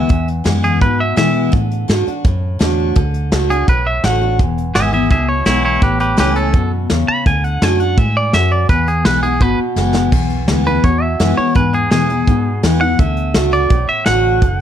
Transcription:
Already playing: E5
0.09 E2, kick, closed hi-hat
0.28 closed hi-hat
0.44 F#2 E3 G#3 B3 E4, snare, closed hi-hat
0.63 G#4, closed hi-hat
0.81 G#2 B2 B4, kick, closed hi-hat
1.00 E5
1.16 B2 E3 G#3 B3 E4 E5, snare, closed hi-hat
1.52 A2 D3, kick, closed hi-hat
1.72 closed hi-hat
1.88 G#2 D3 A3 D4 F#4, snare, closed hi-hat
2.06 D4 F#4, muted fingered electric bass stroke, closed hi-hat
2.25 F#2 A2, kick, closed hi-hat
2.59 E2 D3 A3 D4 F#4, snare, closed hi-hat
2.96 D2 D3, kick, closed hi-hat
3.14 closed hi-hat
3.32 C#2 D3 A3 D4 F#4, snare, closed hi-hat
3.49 D4 F#4 G#4, closed hi-hat
3.68 B1 A2 B4, kick, closed hi-hat
3.87 E5
4.04 A1 D3 A3 D4 F#4 F#5, snare, closed hi-hat
4.21 D4 F#4
4.39 E1 E2, kick, closed hi-hat
4.58 closed hi-hat
4.75 G#1 E3 G#3 B3 E4 G#4 E5, snare, closed hi-hat
4.92 B3 E4 G#4 E5, closed hi-hat
5.10 C#2 B2 G#4 E5, kick, closed hi-hat
5.29 E4 C#5
5.45 B1 E3 G#3 B3 E4 C#5, snare, closed hi-hat
5.65 E4 C#5
5.82 A1 A2 G4 B4, kick, closed hi-hat
6.00 G4 B4, closed hi-hat
6.17 C#2 E3 A3 C#4 E4 G4 B4, snare, closed hi-hat
6.36 A4, closed hi-hat
6.53 F#2 B2, kick, closed hi-hat
6.90 E2 C#3, snare, closed hi-hat
7.08 B5, muted fingered electric bass stroke
7.26 D2 D3 G#5, kick, closed hi-hat
7.44 F#5, closed hi-hat
7.62 F#2 D3 A3 D4 F#4 G#5, snare, closed hi-hat
7.80 D4 F#4 F#5, closed hi-hat
7.98 A2 G#3 E5, kick, closed hi-hat
8.17 D5
8.33 F#2 E5, snare, closed hi-hat
8.52 D5
8.69 E2 B4, kick, closed hi-hat
8.87 G#4, closed hi-hat
9.05 B1 E3 G#3 B3 E4 B4, snare, closed hi-hat
9.23 B3 E4 G#4, closed hi-hat
9.40 G#1 B2 B4, kick, closed hi-hat
9.76 F#1 E3 G#3 B3 E4, snare
9.95 snare
10.12 B1 E2, kick, crash
10.30 closed hi-hat
10.48 D2 E3 G#3 B3 E4, snare, closed hi-hat
10.66 B3 E4 B4, closed hi-hat
10.84 E2 B2 C#5, kick, closed hi-hat
11.02 E5
11.20 F#2 E3 G#3 B3 E4, snare, closed hi-hat
11.37 B3 E4 C#5, muted fingered electric bass stroke
11.55 E2 G#2 B4, kick, closed hi-hat
11.73 G#4, closed hi-hat
11.91 B2 E3 G#3 B3 E4 G#4, snare, closed hi-hat
12.09 B3 E4, closed hi-hat
12.27 G#2 B2, kick, closed hi-hat
12.63 E2 E3 G#3 B3 E4, snare, closed hi-hat
12.81 B3 E4 F#5
12.99 D2 D3 E5, kick, closed hi-hat
13.17 closed hi-hat
13.34 C#2 A3 D4 F#4, snare, closed hi-hat
13.52 D5, closed hi-hat
13.70 B1 A2, kick, closed hi-hat
13.89 E5, muted fingered electric bass stroke
14.06 A1 D3 A3 D4 F#4 F#5, snare, closed hi-hat
14.42 F#1 D3, kick, closed hi-hat

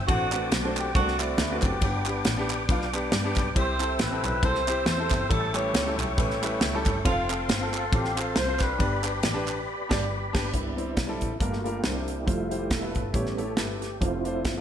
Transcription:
Already playing: C5 E5 G5
0.08 A1 A2 A3 C4 D4 F#4 C5 F#5 A5 D6, kick, ride
0.32 A3 C4 D4 F#4 B4, clap, ride
0.52 B1, snare, ride
0.64 A3 C4 D4 F#4 C5
0.76 G4, clap, ride
0.95 C2 A3 C4 D4 F#4 D5, kick, ride
1.07 snare
1.19 A3 C4 D4 E4 F#4 D5, clap, ride
1.38 D2 E4, snare, ride
1.50 A3 C4 D4 F#4 B4
1.62 F#1 B3 D4 G4, kick, clap, ride
1.82 G1 G2 B3 D4 G4 B4 D5 G5, kick, ride
2.06 B3 D4 G4, clap, ride
2.25 A1, snare, ride
2.37 B3 D4 G4
2.50 clap, ride
2.69 B1 B3 D4 F4, kick, ride
2.81 snare
2.93 B3 D4 G4, clap, ride
3.12 G2, snare, ride
3.24 B3 D4 G4
3.36 B1, kick, snare, clap, ride
3.55 C2 C3 C4 E4 G4 C5 E5 G5 E6, kick, ride
3.59 C5
3.79 C4 E4 A4, clap, ride
3.99 A1 B4, snare, ride
4.11 C4 E4 A4
4.24 B1 B4, clap, ride
4.42 C2 C4 E4 G4 A4 C5, kick, ride
4.55 snare
4.67 C4 E4 G4, clap, ride
4.86 E2 E4 G4 C5, snare, ride
4.97 C4 E4 A4
5.11 G1, kick, snare, clap, ride
5.29 A1 A2 G3 A3 C#4 E4 A4 C#6, kick, ride
5.54 G3 A3 C#4 E4 G4 B4 C#5, clap, ride
5.73 C#2, snare, ride
5.85 G3 A3 C#4 E4 A4
5.98 B1 E4 G4 C#5, clap, ride
6.17 A1 G3 A3 C#4 E4 B4, kick, ride
6.30 snare
6.42 G3 A3 C#4 E4 B4, clap, ride
6.61 C#2, snare, ride
6.73 G3 A3 C#4 E4 A4
6.86 G1, kick, clap, ride
7.04 F1 A3 C4 F4 A4 C5 F5 C6, kick, ride
7.29 C4 F4 A4, clap, ride
7.49 G1, snare, ride
7.61 C4 F4 A4
7.74 A4, clap, ride
7.91 A1 C4 F4 G4 A4, kick, ride
8.04 snare
8.15 C4 F4 A4 C5, clap, ride
8.36 C2 C5, snare, ride
8.47 C4 F4 C5
8.60 D4 G4 B4, kick, snare, clap, ride
8.77 G1 G2 D4 G4 B4 D5 B5, kick, ride
9.02 D4 G4 B4, clap, ride
9.23 A1, snare, ride
9.34 D4 G4 B4
9.48 clap, ride
9.89 G1 D4 G4 D5, kick, snare, crash
10.33 G1 D4 G4 B4, kick, snare, crash
10.53 C2 C3 G3 B3 C4 D4 E4 B4, kick, closed hi-hat
10.77 G3 C4 E4 C5, closed hi-hat
10.97 B1, kick, snare, closed hi-hat
11.07 G3 C4 E4 A4
11.21 A1, kick, closed hi-hat
11.39 G1 G2 G3 A3 A#3 D4 F4 G4 A#4, kick, closed hi-hat
11.53 snare
11.58 F#4
11.64 G3 D4 F4 G4 A#4, closed hi-hat
11.82 C2 C3 A#3 D4 E4 C5, snare, closed hi-hat
12.08 closed hi-hat
12.26 F1 G3 A3 E4 F4 C5, kick, closed hi-hat
12.49 A3 E4 F4 G4 C5, closed hi-hat
12.71 E1 A4, kick, snare, closed hi-hat
12.80 A3 E4 F4 B4
12.95 G1 A4, kick, closed hi-hat
13.12 A1 A2 G3 A3 B3 C#4 E4 G4 C#5, kick, closed hi-hat
13.25 snare
13.37 A3 E4 G4 A4 C#5, closed hi-hat
13.56 G1 A3 E4 G4 B4, snare, closed hi-hat
13.82 G4, snare, closed hi-hat
14.01 F1 F3 A3 C4 D4 E4 F4 C5, kick, closed hi-hat
14.24 A3 D4 E4 F4 C5, closed hi-hat
14.45 G1, kick, snare, closed hi-hat
14.57 A3 D4 F4

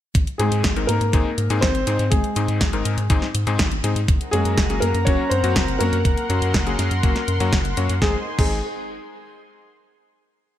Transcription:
0.15 G#1, kick, closed hi-hat
0.27 closed hi-hat
0.38 G#2 G#3 C4 D#4 G#4, closed hi-hat
0.52 G#2, closed hi-hat
0.64 G#1, kick, snare, closed hi-hat
0.76 G#2 G#3 C4 D#4 A#4, closed hi-hat
0.87 G#2 A#3 A#4, closed hi-hat
1.01 G#2, closed hi-hat
1.13 G#1 G#2 G#3 C4 D#4 G#4, kick, closed hi-hat
1.38 G#2, closed hi-hat
1.50 G#2 G#3 C4 D#4 G#4, closed hi-hat
1.61 G#1 C4 C5, kick, snare, closed hi-hat
1.75 closed hi-hat
1.87 G#2 G#3 C4 D#4 G#4, closed hi-hat
1.99 G#2, closed hi-hat
2.10 G#1 G#3 G#4, kick, closed hi-hat
2.24 closed hi-hat
2.36 G#2 G#3 C4 D#4 G#4, closed hi-hat
2.48 G#2, closed hi-hat
2.61 G#1, kick, snare, closed hi-hat
2.73 G#2 G#3 C4 D#4 A#4, closed hi-hat
2.85 G#2, closed hi-hat
2.98 G#2, closed hi-hat
3.10 G#1 G#2 G#3 C4 D#4 G#4, kick, closed hi-hat
3.22 snare
3.35 G#2, closed hi-hat
3.47 G#2 G#3 C4 D#4 G#4, closed hi-hat
3.59 G#1, kick, snare, closed hi-hat
3.72 closed hi-hat
3.84 G#2 G#3 C4 D#4 G#4, closed hi-hat
3.96 G#2, closed hi-hat
4.08 F#1 A#4 F#5 A#5, kick, closed hi-hat
4.21 closed hi-hat
4.31 F#2 F#3 G#3 A#3 C#4 F#4 G#4, closed hi-hat
4.45 F#2, closed hi-hat
4.58 F#1, kick, snare, closed hi-hat
4.70 F#3 A#3 C#4 G#4, closed hi-hat
4.80 F#2 A#3 A#4, closed hi-hat
4.94 F#2, closed hi-hat
5.05 F#1 F#3 A#3 C#4 F#4 C#5, kick, closed hi-hat
5.30 F#2 C4 C5, closed hi-hat
5.43 F#2 F#3 A#3 C#4 F#4, closed hi-hat
5.56 F#1, kick, snare, closed hi-hat
5.68 closed hi-hat
5.79 F#2 F#3 A#3 C#4 F#4 A#4, closed hi-hat
5.93 F#2, closed hi-hat
6.05 F#1 C6, kick, closed hi-hat
6.17 closed hi-hat
6.30 F#2 F#3 A#3 C#4 F#4, closed hi-hat
6.42 F#2, closed hi-hat
6.54 F#1, kick, snare, closed hi-hat
6.67 F#3 A#3 C#4 G#4, closed hi-hat
6.79 F#2, snare, closed hi-hat
6.91 F#2, closed hi-hat
7.03 F#1 F#3 A#3 C#4 F#4, kick, closed hi-hat
7.16 snare, closed hi-hat
7.28 F#2, closed hi-hat
7.40 F#2 F#3 A#3 C#4 F#4, closed hi-hat
7.53 F#1, kick, snare, closed hi-hat
7.65 closed hi-hat
7.77 F#2 F#3 A#3 C#4 F#4, closed hi-hat
7.89 F#2, closed hi-hat
8.02 G#1 G#3 C4 D#4 G#4 C5 G#5 C6, kick, snare
8.39 G#1 G#3 C4 D#4 G#4, kick, crash

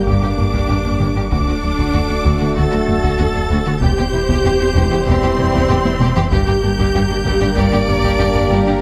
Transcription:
Already playing: G1 D3 A#3 D4 G4 A#4
0.07 G1 G2 G3 D4 G4 D6, taiko
0.22 G2 A#3 G4
0.37 G1 G2 A#3 D4, taiko low
0.53 G2 G3 G4, taiko
0.69 G1 G2 G4, taiko low
0.84 G2 A#3 D4, taiko low
0.99 G1 G2 G3 G4
1.16 G2 G3 D4 G4
1.31 D1 D2 D3 A3 D4 F#4 A4 D6, taiko
1.47 D2 D4 F#4
1.63 D2 F#3 D4
1.78 D2 D3 F#4, taiko
1.93 D2 D4 F#4, taiko low
2.09 D2 D4
2.24 D2 D3 F#4, taiko
2.39 D2 D3 A3 F#4
2.55 D2 D3 F#4 A4 A6, taiko
2.72 D2 F#3 F#4
2.87 D2 F#3 D4, taiko low
3.03 D2 D3 F#4, taiko
3.19 D2 D4 F#4, taiko low
3.34 D2 F#3 D4, taiko low
3.50 D2 D3 F#4
3.66 D2 D3 A3 F#4
3.81 E1 E2 C3 E3 G3 C4 G4 C5 G6, taiko
3.98 E2 C4 G4
4.13 E1 E2 E3 E4
4.28 E2 C3 G4, taiko
4.44 E1 E2 C4 G4, taiko low
4.59 E2 C4 E4
4.75 E1 E2 C3 G4, taiko
4.91 E2 E3 G3 G4
5.07 E1 E2 C3 C4 G4 C6, taiko
5.23 E2 E3 G4
5.38 E1 E2 E3 E4, taiko low
5.54 E2 C3 G4, taiko
5.70 E1 E2 C4 G4, taiko low-mid
5.85 E2 E3 E4, taiko high
6.01 E1 E2 C3 G4, taiko high
6.16 E2 E3 G3 G4, taiko low
6.32 G1 G2 G3 A#3 D4 G4 A#4 G6, taiko
6.47 G2 G4
6.63 G1 G2 A#3 D4
6.79 G2 G3 G4, taiko
6.95 G1 G2 G4, taiko low
7.10 G2 D4 G4
7.25 G1 G2 G3 G4, taiko
7.41 G2 G3 D4 G4
7.56 G1 G2 G3 G4 D5 D7, taiko
7.73 G2 A#3 G4
7.88 G1 G2 A#3 D4, taiko low
8.04 G2 G3 G4, taiko
8.19 G1 G2 G4, taiko low
8.35 G2 A#3 D4, taiko low
8.50 G1 G2 G3 G4
8.67 G2 G3 D4 G4

